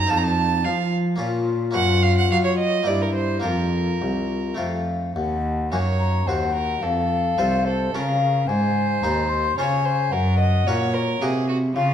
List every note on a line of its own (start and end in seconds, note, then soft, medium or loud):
0.00 0.63 D#4 medium
0.00 0.11 A#5 medium
0.07 0.67 F2 medium
0.07 1.15 C4 medium
0.07 1.16 D#4 medium
0.07 1.17 F4 soft
0.07 0.18 A5 medium
0.11 0.61 F2 medium
0.17 0.25 A#5 medium
0.23 0.66 A5 medium
0.64 1.20 F3 medium
0.64 1.16 F3 medium
0.64 1.19 F4 medium
0.64 0.92 F5 medium
1.16 1.70 A#3 medium
1.16 1.71 C#4 soft
1.16 1.73 F4 soft
1.20 1.72 A#2 medium
1.20 1.75 A#2 medium
1.20 2.88 F4 medium
1.71 2.81 A#3 medium
1.71 2.82 C#4 medium
1.71 2.83 F#4 soft
1.75 2.27 F#2 medium
1.75 2.30 F#2 medium
1.75 2.04 F#5 medium
2.03 2.17 F5 medium
2.18 2.31 F#5 medium
2.31 2.86 F#3 medium
2.31 2.83 F#3 medium
2.31 2.37 F5 loud
2.45 2.58 C#5 medium
2.58 2.88 D#5 medium
2.83 3.38 A#3 soft
2.83 3.40 C4 soft
2.83 3.42 E4 soft
2.83 3.44 E4 medium
2.83 3.03 D5 medium
2.87 3.40 G2 soft
2.87 3.43 G2 medium
3.02 3.14 A#4 medium
3.15 3.43 C5 medium
3.40 4.53 A#3 soft
3.40 4.54 C4 soft
3.40 4.55 F4 soft
3.44 3.98 F2 medium
3.44 4.01 F2 medium
3.44 4.57 F4 medium
3.44 4.56 A#4 medium
4.02 4.55 C2 soft
4.02 4.58 C2 medium
4.55 5.12 A3 soft
4.55 5.13 C4 soft
4.55 5.14 F4 soft
4.55 5.12 F5 medium
4.59 5.12 F2 soft
4.59 5.16 F2 medium
5.15 5.68 D#2 medium
5.15 5.74 D#2 medium
5.15 5.71 F#5 medium
5.72 6.27 F#2 medium
5.72 6.24 F#2 medium
5.72 6.12 A#3 soft
5.72 6.12 D#4 soft
5.72 6.13 F#4 soft
5.72 6.29 C#5 medium
5.72 5.79 G#5 medium
5.99 6.29 A#5 medium
6.27 6.82 D#2 medium
6.27 6.79 D#2 medium
6.27 6.80 C4 soft
6.27 6.80 F#4 soft
6.27 6.54 C5 medium
6.27 6.83 F#5 loud
6.55 6.84 A#4 medium
6.82 7.34 F2 medium
6.82 7.37 F2 medium
6.82 7.40 A4 medium
6.82 7.67 F5 medium
7.38 7.93 C2 medium
7.38 7.90 C2 medium
7.38 7.78 C4 soft
7.38 7.79 F4 soft
7.38 7.79 A4 soft
7.38 7.67 C5 medium
7.65 7.96 A4 medium
7.65 7.94 C5 medium
7.93 8.48 C#3 medium
7.93 8.45 C#3 medium
7.93 8.46 C#4 soft
7.93 8.45 F4 soft
7.93 8.49 A#4 medium
7.93 8.46 A#4 soft
7.93 8.49 F5 loud
8.48 9.03 G#2 medium
8.48 9.00 G#2 medium
8.48 9.57 C5 medium
8.48 9.05 G#5 loud
9.03 9.54 D#2 medium
9.03 9.57 D#2 medium
9.03 9.43 C4 medium
9.03 9.43 D#4 medium
9.03 9.44 C5 medium
9.03 9.31 A#5 medium
9.29 9.58 C6 loud
9.58 10.12 C#3 medium
9.58 10.09 C#3 medium
9.58 10.09 C#4 soft
9.58 10.09 F4 soft
9.58 10.10 C5 medium
9.58 9.87 C#5 medium
9.58 10.13 G#5 loud
9.85 10.13 C5 medium
10.12 10.66 F#2 medium
10.12 10.63 F#2 medium
10.12 10.39 A#4 medium
10.12 10.93 F#5 loud
10.39 10.68 D#5 medium
10.67 11.20 A#2 medium
10.67 11.18 A#2 medium
10.67 11.07 C#4 soft
10.67 11.07 F#4 medium
10.67 11.07 A#4 medium
10.67 10.95 C#5 medium
10.93 11.23 A#4 medium
10.93 11.21 C#5 medium
11.21 11.75 C3 medium
11.21 11.72 C3 medium
11.21 11.72 A#3 medium
11.21 11.72 F#4 medium
11.21 11.48 G#4 medium
11.21 11.73 D#5 soft
11.49 11.57 F#4 medium
11.76 11.94 C#3 medium
11.76 11.94 F4 medium
11.76 11.94 F5 loud